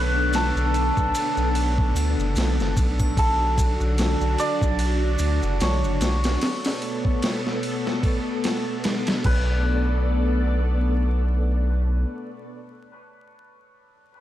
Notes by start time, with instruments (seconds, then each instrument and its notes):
Already playing: analog synth bass B1, string machine B3 D4 A4, hammered dulcimer B4 C#5
0.33 hammered dulcimer A4, snare, ride, maracas
0.56 analog synth bass B1, maracas
0.74 ride, maracas
0.97 analog synth bass B1, kick, maracas
1.15 ride, maracas
1.37 analog synth bass B1, maracas
1.55 ride, maracas
1.78 kick
1.95 analog synth bass D2, ride, triangle, maracas
2.18 analog synth bass F#1, maracas
2.36 analog synth bass B1, snare, ride, maracas
2.59 analog synth bass F#1, snare, maracas
2.77 analog synth bass B1, kick, ride, maracas
2.99 kick, triangle, maracas
3.16 string machine D4 F#4, hammered dulcimer A4, kick, ride, maracas
3.58 kick, ride, maracas
3.80 analog synth bass B1, maracas
3.98 snare, ride, maracas
4.21 analog synth bass B1, maracas
4.38 hammered dulcimer D5, ride, maracas
4.62 analog synth bass B1, kick, maracas
4.79 ride, maracas
5.19 analog synth bass D2, ride, maracas
5.43 analog synth bass F#1, maracas
5.60 analog synth bass B1, hammered dulcimer C#5, snare, ride, maracas
5.83 analog synth bass F#1, maracas
6.01 analog synth bass B1, snare, ride, maracas
6.24 snare, ride, maracas
6.41 string machine B3 A4, snare, ride
6.65 snare, ride
6.82 ride
7.05 kick
7.22 snare, ride
7.47 snare
7.63 ride
7.87 snare
8.03 kick, ride
8.44 snare, ride
8.84 snare, ride
9.07 snare, ride
9.24 analog synth bass B1, string machine B3 A4 D5, hammered dulcimer B4, kick, crash